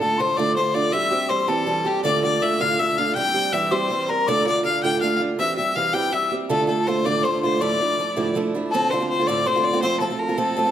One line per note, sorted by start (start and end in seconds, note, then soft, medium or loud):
0.01 0.18 D3 soft
0.01 0.19 A3 soft
0.01 0.19 D4 soft
0.01 0.19 F4 soft
0.01 0.22 A4 medium
0.01 0.19 A5 medium
0.18 0.38 D3 medium
0.18 0.38 A3 medium
0.18 0.38 D4 medium
0.18 0.37 F4 medium
0.18 0.38 C5 medium
0.18 0.38 C6 medium
0.36 0.57 D2 soft
0.36 0.57 A2 soft
0.36 0.56 D3 medium
0.36 0.56 A3 medium
0.36 0.57 D4 medium
0.36 0.56 F4 medium
0.36 0.55 D5 medium
0.36 0.58 D6 medium
0.56 0.75 D3 medium
0.56 0.75 A3 medium
0.56 0.75 D4 medium
0.56 0.73 F4 medium
0.56 0.76 C5 medium
0.56 0.76 C6 medium
0.74 0.92 D3 soft
0.74 0.93 A3 soft
0.74 0.93 D4 soft
0.74 0.93 F4 soft
0.74 0.94 D5 medium
0.74 0.93 D6 medium
0.92 1.12 E3 medium
0.92 1.11 G3 medium
0.92 1.11 C4 medium
0.92 1.10 G4 medium
0.92 1.31 E5 loud
0.92 1.30 E6 medium
1.11 1.29 G3 soft
1.11 1.29 C4 soft
1.11 1.30 G4 soft
1.29 1.48 E3 soft
1.29 1.47 G3 medium
1.29 1.48 C4 medium
1.29 1.46 G4 medium
1.29 1.50 C5 medium
1.29 1.50 C6 medium
1.48 1.65 E3 soft
1.48 1.66 G3 medium
1.48 1.66 C4 medium
1.48 1.67 G4 medium
1.48 1.88 A4 medium
1.48 1.88 A5 medium
1.66 1.85 E3 medium
1.66 1.85 G3 medium
1.66 1.84 C4 medium
1.66 1.83 G4 medium
1.85 2.05 G3 soft
1.85 2.04 C4 soft
1.85 2.04 G4 medium
1.85 2.03 G5 medium
2.04 2.23 D2 medium
2.04 2.23 A2 medium
2.04 2.23 D3 medium
2.04 2.23 A3 medium
2.04 2.22 D4 medium
2.04 2.22 F4 medium
2.04 2.22 D5 loud
2.04 2.21 D6 medium
2.23 2.40 D3 soft
2.23 2.41 A3 soft
2.23 2.42 D4 soft
2.23 2.42 F4 soft
2.23 2.44 D5 medium
2.23 2.44 D6 medium
2.41 2.60 D3 medium
2.41 2.59 A3 medium
2.41 2.60 D4 medium
2.41 2.59 F4 medium
2.41 2.63 E5 medium
2.41 2.59 E6 medium
2.60 2.80 D2 soft
2.60 2.79 A2 soft
2.60 2.78 D3 soft
2.60 2.78 A3 medium
2.60 2.79 D4 medium
2.60 2.79 F4 medium
2.60 2.81 F5 medium
2.60 2.77 F6 medium
2.78 2.98 D3 medium
2.78 2.98 A3 medium
2.78 2.98 D4 medium
2.78 2.97 F4 medium
2.78 2.99 E5 medium
2.78 2.99 E6 medium
2.97 3.16 D3 soft
2.97 3.16 A3 soft
2.97 3.17 D4 soft
2.97 3.16 F4 soft
2.97 3.15 F5 medium
2.97 3.17 F6 medium
3.15 3.35 E3 medium
3.15 3.35 G3 medium
3.15 3.34 C4 medium
3.15 3.33 G4 medium
3.15 3.54 G5 loud
3.15 3.54 G6 medium
3.34 3.52 G3 soft
3.34 3.52 C4 soft
3.34 3.53 G4 soft
3.53 3.71 E3 medium
3.53 3.71 G3 medium
3.53 3.70 C4 medium
3.53 3.70 G4 medium
3.53 3.73 E5 medium
3.53 3.73 E6 medium
3.71 3.89 E3 soft
3.71 3.90 G3 medium
3.71 3.90 C4 medium
3.71 3.90 G4 medium
3.71 4.11 C5 medium
3.71 4.07 C6 medium
3.90 4.09 E3 medium
3.90 4.08 G3 medium
3.90 4.08 C4 medium
3.90 4.07 G4 medium
4.08 4.28 G3 soft
4.08 4.27 C4 soft
4.08 4.27 G4 soft
4.08 4.30 A#4 medium
4.08 4.28 A#5 medium
4.27 4.46 D2 medium
4.27 4.46 A2 medium
4.27 4.46 D3 medium
4.27 4.46 A3 medium
4.27 4.46 D4 medium
4.27 4.45 F4 medium
4.27 4.46 D5 loud
4.27 4.45 D6 medium
4.46 4.63 D3 soft
4.46 4.63 A3 soft
4.46 4.64 D4 soft
4.46 4.64 F4 soft
4.46 4.64 D5 medium
4.46 4.63 D6 medium
4.64 4.83 D3 soft
4.64 4.83 A3 medium
4.64 4.83 D4 medium
4.64 4.82 F4 medium
4.64 4.82 F5 medium
4.64 4.84 F6 medium
4.83 5.02 D2 soft
4.83 5.02 A2 soft
4.83 5.01 D3 soft
4.83 5.01 A3 medium
4.83 5.02 D4 medium
4.83 5.02 F4 medium
4.83 5.00 G5 medium
4.83 5.02 G6 medium
5.01 5.20 D3 medium
5.01 5.20 A3 medium
5.01 5.20 D4 medium
5.01 5.19 F4 medium
5.01 5.18 F5 medium
5.01 5.20 F6 medium
5.20 5.38 D3 soft
5.20 5.39 A3 soft
5.20 5.39 D4 soft
5.20 5.38 F4 soft
5.39 5.57 E3 medium
5.39 5.58 G3 medium
5.39 5.57 C4 medium
5.39 5.56 G4 medium
5.39 5.56 E5 loud
5.39 5.56 E6 medium
5.57 5.76 G3 soft
5.57 5.76 C4 soft
5.57 5.76 G4 medium
5.57 5.77 E5 medium
5.57 5.74 E6 medium
5.76 5.94 E3 soft
5.76 5.94 G3 medium
5.76 5.93 C4 medium
5.76 5.92 G4 medium
5.76 5.95 F5 medium
5.76 5.96 F6 medium
5.93 6.11 E3 soft
5.93 6.12 G3 soft
5.93 6.13 C4 medium
5.93 6.12 G4 medium
5.93 6.14 G5 medium
5.93 6.13 G6 medium
6.12 6.31 E3 medium
6.12 6.32 G3 medium
6.12 6.31 C4 medium
6.12 6.30 G4 medium
6.12 6.31 E5 medium
6.12 6.31 E6 medium
6.32 6.50 G3 soft
6.32 6.50 C4 soft
6.32 6.50 G4 soft
6.49 6.68 D2 medium
6.49 6.68 A2 medium
6.49 6.68 D3 medium
6.49 6.68 A3 medium
6.49 6.67 D4 medium
6.49 6.66 F4 medium
6.49 6.67 A4 medium
6.49 6.85 A5 medium
6.67 6.86 D3 soft
6.67 6.87 A3 soft
6.67 6.87 D4 soft
6.67 6.86 F4 medium
6.67 6.89 A4 medium
6.87 7.05 D3 medium
6.87 7.05 A3 medium
6.87 7.05 D4 medium
6.87 7.05 F4 medium
6.87 7.07 C5 medium
7.05 7.25 D2 soft
7.05 7.25 A2 soft
7.05 7.23 D3 medium
7.05 7.24 A3 medium
7.05 7.24 D4 medium
7.05 7.24 F4 medium
7.05 7.25 D5 medium
7.05 7.27 D6 medium
7.24 7.43 D3 medium
7.24 7.43 A3 medium
7.24 7.43 D4 medium
7.24 7.42 F4 medium
7.24 7.42 C5 medium
7.24 7.42 C6 medium
7.43 7.61 D3 soft
7.43 7.60 A3 soft
7.43 7.61 D4 soft
7.43 7.61 F4 soft
7.43 7.62 C5 medium
7.43 7.62 C6 medium
7.61 7.80 D2 medium
7.61 7.80 A2 medium
7.61 7.80 F3 medium
7.61 7.80 A3 medium
7.61 7.80 D4 medium
7.61 7.80 E4 medium
7.61 8.35 D5 medium
7.61 8.35 D6 medium
7.81 7.98 F3 soft
7.81 7.98 A3 soft
7.81 7.99 D4 soft
7.81 7.99 E4 soft
7.99 8.16 F3 medium
7.99 8.15 A3 medium
7.99 8.16 D4 medium
7.99 8.15 E4 medium
8.16 8.36 D2 medium
8.16 8.35 A2 medium
8.16 8.34 F3 medium
8.16 8.35 A3 medium
8.16 8.35 D4 medium
8.16 8.35 E4 medium
8.35 8.54 F3 medium
8.35 8.54 A3 medium
8.35 8.54 D4 medium
8.35 8.53 E4 medium
8.55 8.74 F3 soft
8.55 8.73 A3 soft
8.55 8.73 D4 soft
8.55 8.73 E4 soft
8.71 8.92 D2 medium
8.71 8.92 A2 medium
8.71 8.91 D3 medium
8.71 8.91 C4 medium
8.71 8.92 F4 medium
8.71 8.91 A4 medium
8.71 8.92 A5 medium
8.75 8.92 A3 medium
8.90 9.01 D3 medium
8.90 9.00 A3 medium
8.90 9.01 C4 medium
8.90 8.99 F4 medium
8.90 9.09 C5 medium
8.90 9.09 C6 medium
9.00 9.20 D3 soft
9.00 9.19 A3 soft
9.00 9.20 C4 soft
9.00 9.18 F4 medium
9.09 9.29 C5 medium
9.09 9.29 C6 medium
9.19 9.28 D3 soft
9.19 9.29 A3 soft
9.19 9.28 C4 soft
9.19 9.28 F4 soft
9.27 9.47 D2 medium
9.27 9.47 A2 medium
9.27 9.44 D3 medium
9.27 9.46 A3 medium
9.27 9.46 C4 medium
9.27 9.47 F4 medium
9.27 9.48 D5 medium
9.27 9.48 D6 medium
9.46 9.55 D3 medium
9.46 9.56 A3 medium
9.46 9.56 C4 medium
9.46 9.55 F4 medium
9.46 9.66 C5 medium
9.46 9.83 C6 medium
9.56 9.73 D3 soft
9.56 9.73 A3 medium
9.56 9.73 C4 soft
9.56 9.72 F4 medium
9.64 9.81 D5 medium
9.73 9.82 D3 soft
9.73 9.82 A3 medium
9.73 9.82 C4 soft
9.73 9.82 F4 medium
9.82 9.99 F3 medium
9.82 10.01 A3 medium
9.82 10.00 C4 medium
9.82 10.01 F4 medium
9.82 10.00 C5 loud
9.82 10.03 C6 medium
10.00 10.10 F3 medium
10.00 10.10 A3 medium
10.00 10.11 C4 medium
10.00 10.09 F4 medium
10.00 10.20 A4 medium
10.00 10.39 A5 medium
10.10 10.28 A3 soft
10.10 10.29 C4 soft
10.10 10.28 F4 medium
10.19 10.39 A#4 medium
10.29 10.37 A3 soft
10.29 10.37 C4 soft
10.29 10.37 F4 medium
10.38 10.55 F3 medium
10.38 10.57 A3 medium
10.38 10.56 C4 medium
10.38 10.57 F4 medium
10.38 10.71 A4 medium
10.38 10.71 A5 medium
10.57 10.66 F3 medium
10.57 10.65 A3 medium
10.57 10.66 C4 medium
10.57 10.64 F4 medium
10.65 10.71 A3 soft
10.65 10.71 C4 soft
10.65 10.71 F4 medium